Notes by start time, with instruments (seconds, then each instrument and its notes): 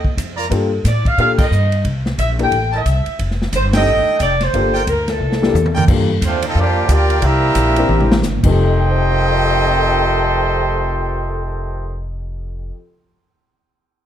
Already playing: upright bass D#2, saxophone section D#5
0.04 kick
0.17 upright bass F2, kick, hi-hat pedal, ride
0.37 trumpet section F4 A#4 D5 A#5
0.49 upright bass G2, upright piano A#3 D4 F4 G4 A4, kick, ride
0.84 upright bass A2, saxophone section D5, kick, snare, hi-hat pedal, ride
1.05 saxophone section F5, kick, ride
1.18 upright bass A#2, upright piano A#3 D4 F4 G4 A4, saxophone section F5, kick, ride
1.38 trumpet section F4 A#4 D5 G5, saxophone section D#5, kick, crash
1.51 upright bass G2, hi-hat pedal
1.72 ride
1.84 upright bass C2, kick, ride
2.06 snare
2.18 upright bass A#1, saxophone section E5, kick, hi-hat pedal, ride
2.38 upright piano A#3 D4 E4 G4 A4, ride
2.43 saxophone section G5
2.51 upright bass A1, kick, ride
2.72 trumpet section E4 A#4 D5 A5
2.77 saxophone section E5
2.85 upright bass C2, kick, hi-hat pedal, ride
3.06 muted upright bass stroke, ride
3.19 upright bass F1, kick, ride
3.31 snare
3.42 snare
3.53 upright bass G1, saxophone section C5, kick, hi-hat pedal, ride
3.73 upright piano C4 D4 D#4 G4 A4, trumpet section D#4 A4 D#5 G5, snare, ride
3.77 saxophone section D#5
3.87 upright bass A1
4.07 muted upright bass stroke
4.20 upright bass F1, trumpet section D#4 A4 D5 G5, saxophone section D5, kick, hi-hat pedal, ride
4.41 saxophone section C5, snare, ride
4.54 upright bass G1, upright piano A#3 D4 F4 G4 A4, kick, ride
4.74 trumpet section F4 A#4 D5 G5
4.87 upright bass D2, saxophone section A#4, kick, hi-hat pedal, ride
5.07 trombone section A#2 E3 A3, saxophone section A4, snare, ride
5.20 upright bass C2
5.32 snare
5.42 upright piano A#3 D4 E4 G4 A4, snare
5.53 upright bass E2, hi-hat pedal, high tom
5.66 high tom
5.75 trumpet section F4 A#4 D5 G5, floor tom
5.88 upright bass G2, upright piano A#3 D4 F4 G4 A4, kick, crash
6.21 upright bass D#2, trombone section C4, trumpet section F4, kick, hi-hat pedal, ride
6.25 trumpet section A3 D4 C5
6.42 trombone section D#4, ride
6.47 trumpet section C4 F4 A4 D#5
6.55 upright bass F2, trombone section F3 A#3 D4, kick
6.59 trumpet section A#3 F4 G4 D5
6.88 upright bass D2, trombone section A#3 D4 G4, trumpet section A#4 D5 G5, kick, hi-hat pedal, ride
6.92 trumpet section F4
7.10 ride
7.22 upright bass C2, trombone section G3 A#3 E4, trumpet section C4 G4 A#4 E5, kick, ride
7.55 upright bass A#1, kick, hi-hat pedal, ride
7.76 upright piano C4 D4 E4 G4 A#4, ride
7.89 upright bass A1, high tom
8.00 mid tom
8.12 snare
8.22 upright bass G1, snare, hi-hat pedal
8.43 upright bass F1, upright piano F2 F3 D#4 G4 A4, trombone section F2 C3 D#3 A3, trumpet section A4 D#5 G5 C6, kick, crash
8.90 upright piano C5
9.06 upright piano G5
9.15 upright piano C6
9.25 upright piano D#6
9.36 upright piano G6
9.48 upright piano C7
9.60 upright piano D#7